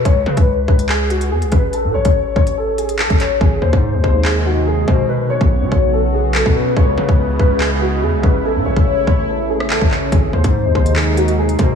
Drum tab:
HH |x--x---x--xx-xx-|x--x---x--xx-xx-|----------------|----------------|
CP |--------x-------|------------x-x-|--------x-------|------------x---|
SD |----------------|----------------|----------------|----------------|
BD |o--o--o-------o-|---o--o------o--|o--o--o-------o-|---o--o------o--|

HH |----------------|----------------|x--x---x--xx-xx-|
CP |--------x-------|------------x-x-|--------x-------|
SD |----------------|-----------r----|----------------|
BD |o--o--o-------o-|---o--o------o--|o--o--o-------o-|